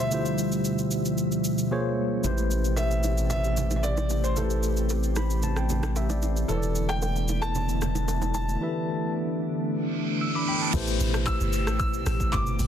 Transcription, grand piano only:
0.00 0.48 E5 medium
2.76 3.28 E5 loud
3.30 3.75 E5 loud
3.76 3.83 E5 medium
3.83 4.25 D5 medium
4.24 4.37 C5 medium
4.36 4.86 A4 medium
6.48 6.90 A4 medium
6.89 7.44 G5 loud
7.42 8.33 A5 loud
8.34 9.10 A5 medium
11.27 11.78 E6 loud
11.80 12.34 E6 loud
12.32 12.67 D6 loud

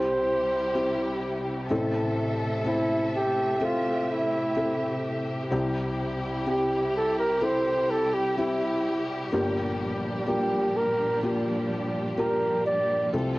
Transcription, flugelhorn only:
0.00 1.19 C5 medium
2.68 3.11 E4 medium
3.16 3.59 G4 medium
3.64 4.13 F4 medium
4.12 5.05 E4 medium
6.49 6.92 G4 medium
6.97 7.18 A4 medium
7.19 7.45 A#4 medium
7.44 7.92 C5 medium
7.90 8.15 A4 medium
8.14 8.37 G4 medium
8.38 9.05 E4 medium
10.28 10.78 G4 medium
10.76 11.23 A#4 medium
12.19 12.63 A#4 medium
12.66 13.10 D5 medium

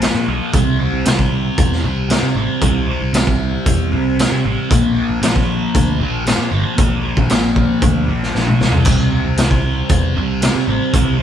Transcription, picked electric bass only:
0.15 0.26 A#2 medium
0.28 0.39 B1 loud
0.54 0.87 C2 loud
0.93 1.04 C2 medium
1.06 1.49 C2 medium
1.58 1.85 E2 medium
1.84 2.17 C2 medium
2.23 2.34 C3 medium
2.35 2.47 A1 medium
2.62 2.95 C2 loud
3.01 3.12 C2 medium
3.13 3.57 C2 medium
3.66 3.93 E2 medium
3.92 4.25 C2 medium
4.32 4.43 C3 medium
4.46 4.56 A1 loud
4.71 5.03 A#1 loud
5.09 5.20 A#1 medium
5.22 5.65 A#1 loud
5.75 6.02 D2 medium
6.01 6.33 A#1 medium
6.38 6.50 A#2 medium
6.52 6.63 G1 loud
6.79 7.11 A#1 loud
7.17 7.28 A#1 medium
7.31 7.74 A#1 loud
7.82 8.11 D2 medium
8.09 8.31 A#1 medium
8.35 8.58 A#1 medium
8.60 8.84 C2 medium
8.86 9.19 C2 loud
9.25 9.36 C2 medium
9.38 9.82 C2 loud
9.90 10.18 E2 medium
10.17 10.49 C2 loud
10.55 10.66 C3 medium
10.68 10.79 A1 loud
10.93 11.23 C2 loud

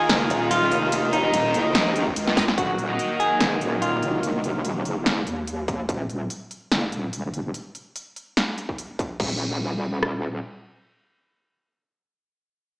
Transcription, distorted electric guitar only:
0.00 1.21 D#4 medium
0.00 1.21 A#4 medium
0.00 1.21 D#5 loud
1.24 2.05 D#4 medium
1.24 2.05 A#4 medium
1.24 2.05 D#5 loud
2.37 2.44 D#4 medium
2.37 2.44 A#4 medium
2.37 2.44 D#5 loud
2.89 4.44 D#4 medium
2.89 4.44 A#4 medium
2.89 4.44 D#5 medium

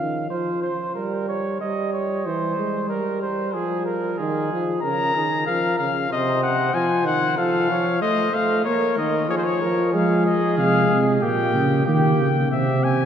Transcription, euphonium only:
0.00 0.30 D#3 medium
0.31 0.72 F3 medium
0.96 1.57 G3 medium
1.61 2.27 G3 medium
2.26 2.57 E3 medium
2.58 2.91 G#3 medium
2.89 3.56 G3 medium
3.54 4.19 F3 medium
4.20 4.51 D#3 medium
4.52 4.83 F3 medium
4.83 5.14 C#3 medium
5.15 5.47 D#3 medium
5.47 5.78 F3 medium
5.79 6.10 C#3 medium
6.11 6.73 C3 medium
6.74 7.06 F3 medium
7.05 7.37 D#3 medium
7.38 7.69 F3 medium
7.70 8.03 F3 medium
8.02 8.32 A3 medium
8.33 8.65 A3 medium
8.66 8.99 A#3 medium
8.97 9.30 D#3 medium
9.29 9.61 F3 medium
9.62 9.96 F3 medium
9.94 10.36 G#3 medium
10.58 11.24 G#3 medium
11.23 11.86 A#3 medium
11.87 12.50 A#3 medium
12.52 13.05 C4 medium

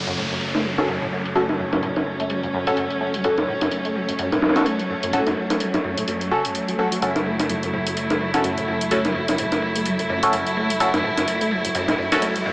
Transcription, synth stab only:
0.78 0.87 C#4 medium
0.78 0.87 F#4 medium
0.78 0.87 A4 loud
1.35 1.43 C#4 medium
1.35 1.43 F#4 medium
1.35 1.43 A4 medium
2.67 2.76 C#4 medium
2.67 2.76 F#4 medium
2.67 2.76 A4 loud
3.24 3.32 C#4 medium
3.24 3.32 F#4 medium
3.24 3.32 A4 medium
4.56 4.65 C#4 medium
4.56 4.65 F#4 medium
4.56 4.65 A4 loud
5.13 5.21 C#4 medium
5.13 5.21 F#4 medium
5.13 5.21 A4 medium
6.31 6.43 C#4 medium
6.31 6.43 F#4 medium
6.31 6.43 A4 loud
6.79 6.86 C#4 medium
6.79 6.86 F#4 medium
6.79 6.86 A4 medium
7.02 7.10 C#4 medium
7.02 7.10 F#4 medium
7.02 7.10 A4 medium
8.34 8.43 C#4 medium
8.34 8.43 F#4 medium
8.34 8.43 A4 loud
8.91 8.99 C#4 medium
8.91 8.99 F#4 medium
8.91 8.99 A4 medium
10.23 10.32 C#4 medium
10.23 10.32 F#4 medium
10.23 10.32 A4 medium
10.80 10.88 C#4 medium
10.80 10.88 F#4 medium
10.80 10.88 A4 medium
12.12 12.21 C#4 medium
12.12 12.21 F#4 medium
12.12 12.21 A4 medium

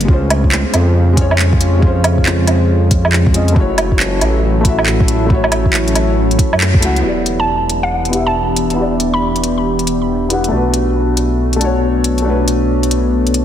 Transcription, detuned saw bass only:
0.08 0.64 C#2 medium
0.74 2.47 F2 medium
2.48 3.58 F2 loud
3.56 4.20 F#1 loud
4.21 5.94 A1 loud
5.95 6.38 A1 loud
6.53 6.84 F#2 medium
6.82 7.03 C#2 medium
7.04 10.50 E1 medium
10.52 13.45 B1 medium

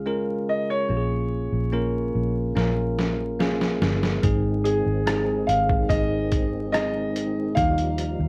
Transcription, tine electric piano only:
0.00 0.05 G#3 medium
0.00 0.06 C#4 medium
0.00 0.06 F4 medium
0.00 0.92 G#4 medium
0.05 0.85 G#3 medium
0.05 0.86 C#4 medium
0.05 0.86 F4 medium
0.05 0.86 A#4 medium
0.89 2.11 A#2 soft
0.89 1.69 A#3 medium
0.89 1.69 C#4 medium
0.89 1.69 F4 soft
0.89 0.97 G4 soft
0.97 1.73 G#4 medium
1.72 2.52 A#3 medium
1.72 2.52 C#4 medium
1.72 2.52 F4 medium
1.72 2.53 A#4 medium
2.56 3.35 A#3 medium
2.56 3.36 C#4 medium
2.56 3.36 F4 medium
2.56 3.36 A#4 medium
3.39 4.19 A#3 medium
3.39 4.19 C#4 medium
3.39 4.19 F4 medium
3.39 4.20 G#4 medium
4.22 5.44 G#2 medium
4.22 5.02 G#3 medium
4.22 5.02 C4 medium
4.22 5.03 D#4 medium
4.22 5.03 G#4 medium
5.06 5.86 G#3 medium
5.06 5.86 C4 medium
5.06 5.86 D#4 medium
5.06 5.14 G4 medium
5.14 5.89 G#4 medium
5.89 6.69 G#3 medium
5.89 6.69 C4 medium
5.89 6.69 D#4 medium
5.89 6.69 G#4 medium
6.72 7.52 G#3 medium
6.72 7.52 C4 medium
6.72 7.53 D#4 medium
6.72 7.53 G#4 medium
7.56 8.28 D#3 medium
7.56 8.28 A#3 medium
7.56 8.28 D#4 medium
7.56 8.28 F4 medium
7.56 8.28 G4 medium

